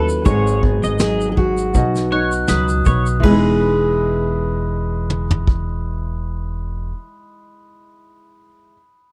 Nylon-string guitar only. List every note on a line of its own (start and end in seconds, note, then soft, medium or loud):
0.00 0.99 F#3 medium
0.00 0.34 C#4 medium
0.00 0.34 E4 medium
0.00 0.34 A4 medium
0.26 1.74 G#2 medium
0.63 3.27 B3 medium
1.00 1.83 F#3 medium
1.38 1.83 G#4 medium
1.75 3.32 B2 medium
2.12 3.31 D#4 medium
2.50 3.24 F#3 medium
2.87 3.34 B4 medium
3.20 6.91 E3 medium
3.24 6.96 G#3 medium
3.24 7.00 B3 medium
3.31 7.03 D#4 medium
3.31 7.06 G#4 medium